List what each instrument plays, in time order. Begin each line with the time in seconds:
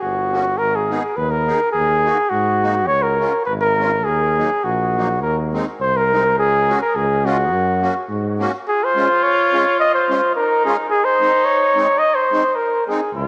0.01 tuba G1, flugelhorn F#4
0.32 accordion A#3 C#4 F#4
0.58 tuba G#1, flugelhorn A#4
0.75 flugelhorn G#4
0.90 accordion B3 D#4 G#4
1.16 tuba D#2, flugelhorn B4
1.31 flugelhorn A#4
1.46 accordion B3 D#4 G#4
1.72 tuba D#2, flugelhorn G#4
2.04 accordion A#3 D#4 F#4
2.29 tuba G#2, flugelhorn F#4
2.62 accordion A#3 D#4 F#4
2.87 tuba C#2, flugelhorn C#5
3.02 flugelhorn A#4
3.19 accordion G#3 C#4 F4
3.45 tuba G#1, flugelhorn B4
3.61 flugelhorn A#4
3.78 accordion G#3 C#4 F4
4.04 tuba D#2, flugelhorn G#4
4.37 accordion F#3 A#3 D#4
4.64 tuba A#1, flugelhorn F#4
4.96 accordion F#3 A#3 D#4
5.22 tuba D#2, flugelhorn A#4
5.53 accordion G#3 C4 D#4
5.80 tuba C2, flugelhorn C5
5.97 flugelhorn A#4
6.11 accordion G#3 C4 D#4
6.37 tuba C#2, flugelhorn G#4
6.68 accordion G#3 C#4 F#4
6.81 flugelhorn A#4
6.96 tuba C#2, flugelhorn G#4
7.24 accordion G#3 C#4 F4, flugelhorn F#4
7.51 tuba F#2
7.82 accordion A#3 C#4 F#4
8.09 tuba G#2
8.39 accordion A#3 C#4 F#4
8.67 trumpet F4, flugelhorn G#4
8.84 flugelhorn C5
8.95 accordion G#3 C#4 F4
9.23 flugelhorn C#5
9.52 accordion G#3 C#4 F4
9.80 flugelhorn D#5
9.94 flugelhorn C5
10.09 accordion G#3 C#4 F4
10.35 trumpet D#4, flugelhorn A#4
10.65 accordion G#3 C#4 F4, flugelhorn G#4
10.90 trumpet D#4, flugelhorn G#4
11.04 flugelhorn C5
11.20 accordion G#3 C4 D#4
11.44 flugelhorn C#5
11.75 accordion G#3 C4 D#4
11.98 flugelhorn D#5
12.15 flugelhorn C5
12.31 accordion G#3 C4 D#4
12.55 flugelhorn A#4
12.87 accordion G#3 C4 D#4, flugelhorn G#4
13.14 tuba C#2, trumpet F4